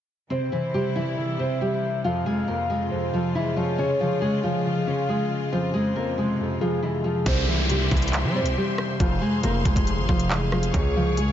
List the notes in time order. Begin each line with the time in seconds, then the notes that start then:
0.30 C2 C3 G3 C4 E4 C5
0.52 C3 E3 E4
0.74 C3 G3 G4
0.96 E3 E4
1.17 C3 E5
1.39 C3 C4 C5
1.61 G3 C4 G4
1.83 C5
2.04 F2 F3 G#3 F4 F5
2.26 F2 G#3 G#4
2.48 F2 A#3 A#4
2.70 C3 G#3 G#4
2.91 F2 C5
3.13 F2 F3 F4
3.35 E3 G#3 E4
3.56 F3 C4 F4 C#5
3.78 C#2 C#3 C#4 C#5
4.00 C#3 F3 F4
4.22 C#3 G#3 G#4
4.43 F3 F4
4.65 C#3 F5
4.87 C#3 C#4 C#5
5.09 G#3 C#4 G#4
5.30 C#5
5.52 F2 C3 F3 F4 C5
5.74 F2 G#3 G#4
5.96 F2 A#3 A#4
6.17 C3 G#3 G#4
6.39 F2
6.61 F2 F3 F4 G#4
6.83 E3 G#3 E4
7.04 F3 C4 F4
7.26 C2 C3 C4 G4 C5 E5 C6, kick, closed hi-hat, downlifter
7.48 C3 E3 E4
7.70 C3 G3 G4, closed hi-hat
7.91 C2 E3 E4, kick, closed hi-hat
7.97 closed hi-hat
8.02 closed hi-hat
8.08 closed hi-hat
8.13 C3, clap, closed hi-hat
8.24 G3
8.35 C3 C4 C5
8.40 C2
8.46 closed hi-hat
8.56 G3 C4 G4
8.78 C5, cross-stick
9.00 F1 F2 F3 F4 G#4 F5 C6, kick, closed hi-hat
9.22 F2 G#3 G#4
9.43 F1 F2 A#3 A#4, closed hi-hat
9.65 F1 C3 G#3 G#4, kick, closed hi-hat
9.76 F1, kick, closed hi-hat
9.87 F2, closed hi-hat
9.98 G#1
10.09 F1 F2 F3 F4, kick
10.20 closed hi-hat
10.30 E3 G#3 E4, clap
10.52 F3 C4 F4, cross-stick
10.63 closed hi-hat
10.74 C#2 C#3 C#4 C#5 C#6, kick, closed hi-hat
10.96 C#3 F3 F4
11.07 C2
11.17 C#3 G#3 G#4, closed hi-hat
11.23 C#2